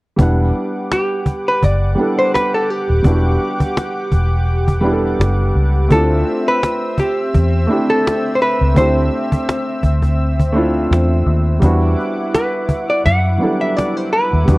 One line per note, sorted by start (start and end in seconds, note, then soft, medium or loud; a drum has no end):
0.16 0.51 E1 medium
0.16 1.49 G3 medium
0.16 1.49 B3 medium
0.16 1.50 D4 medium
0.16 5.86 G4 medium
0.16 5.86 F#5 medium
0.16 5.86 D6 medium
0.16 cajon bass loud
0.21 1.51 E4 medium
0.21 1.52 F#5 medium
0.92 1.49 G4 medium
0.92 cajon slap loud
1.26 cajon bass medium
1.48 1.64 B4 medium
1.63 1.94 F#1 medium
1.63 2.18 D5 loud
1.63 cajon bass medium
1.95 2.95 G3 medium
1.95 2.95 B3 medium
1.95 2.96 D4 medium
2.00 2.97 E4 medium
2.00 2.97 A4 medium
2.19 2.33 C5 medium
2.34 2.52 B4 medium
2.34 cajon slap loud
2.54 2.70 A4 medium
2.70 4.12 G4 medium
2.90 3.03 D#1 medium
3.02 3.36 E1 loud
3.02 4.34 G3 medium
3.02 4.35 B3 medium
3.02 4.36 D4 medium
3.02 cajon bass loud
3.07 4.37 E4 medium
3.07 3.13 F#4 medium
3.15 4.41 G4 medium
3.60 cajon bass medium
3.77 cajon slap loud
4.12 5.15 E1 medium
4.12 cajon bass medium
4.68 cajon bass medium
4.81 5.80 G3 medium
4.81 5.81 B3 medium
4.81 5.82 D4 medium
4.85 5.82 E4 medium
4.85 4.92 G4 medium
4.93 5.86 A4 medium
5.20 5.51 F#1 medium
5.20 cajon slap loud
5.56 5.87 C#2 medium
5.88 6.22 D2 medium
5.88 7.20 A3 medium
5.88 7.21 C4 medium
5.88 11.58 C4 medium
5.88 7.22 D4 medium
5.88 6.43 A4 medium
5.88 11.58 E5 medium
5.88 11.58 E6 medium
5.88 cajon bass loud
5.92 7.22 E4 medium
5.92 7.23 F4 medium
6.48 7.00 B4 medium
6.63 cajon slap loud
6.97 7.90 G4 medium
6.97 cajon bass medium
7.34 7.66 E2 loud
7.34 cajon bass medium
7.67 8.66 A3 medium
7.67 8.67 C4 medium
7.67 8.67 D4 medium
7.71 8.68 E4 medium
7.71 8.69 G4 medium
7.90 8.36 A4 medium
8.07 cajon slap loud
8.35 8.41 C5 medium
8.42 8.77 B4 loud
8.61 8.75 C#2 medium
8.74 9.08 D2 medium
8.74 10.06 A3 medium
8.74 10.07 C4 medium
8.74 10.07 D4 medium
8.74 10.15 C5 loud
8.74 cajon bass loud
8.78 10.08 E4 medium
8.78 10.09 G4 medium
9.32 cajon bass medium
9.49 cajon slap loud
9.83 10.86 D2 medium
9.83 cajon bass medium
10.02 cajon bass medium
10.39 cajon bass medium
10.52 11.52 A3 medium
10.52 11.52 C4 medium
10.52 11.53 D4 medium
10.56 11.54 E4 medium
10.56 11.54 F4 medium
10.91 11.22 E2 medium
10.91 cajon slap loud
11.27 11.58 D#2 loud
11.60 11.94 E2 medium
11.60 12.92 G3 medium
11.60 12.92 B3 medium
11.60 12.93 D4 medium
11.60 14.58 E4 medium
11.60 14.58 F#5 medium
11.60 14.58 D6 medium
11.60 cajon bass loud
11.64 12.94 E4 medium
11.64 12.94 F#4 medium
11.99 cajon slap soft
12.18 cajon slap soft
12.34 12.86 B4 medium
12.34 cajon slap loud
12.69 cajon bass medium
12.90 13.04 D5 medium
13.06 13.37 F#2 medium
13.06 13.61 F#5 loud
13.06 cajon bass medium
13.38 13.46 F#3 medium
13.38 14.38 B3 medium
13.38 14.39 D4 medium
13.38 cajon slap soft
13.42 14.41 G3 medium
13.42 14.39 E4 medium
13.42 14.40 A4 medium
13.61 13.77 E5 medium
13.61 cajon slap soft
13.77 13.97 D5 loud
13.77 cajon slap loud
13.97 14.12 C5 medium
14.12 14.58 B4 medium
14.12 cajon slap soft
14.33 14.46 D#2 medium
14.33 cajon slap soft
14.45 14.58 E2 loud
14.45 14.58 G3 medium
14.45 14.58 B3 medium
14.45 14.58 D4 medium
14.45 cajon bass loud
14.49 14.58 E4 medium
14.49 14.58 F#4 medium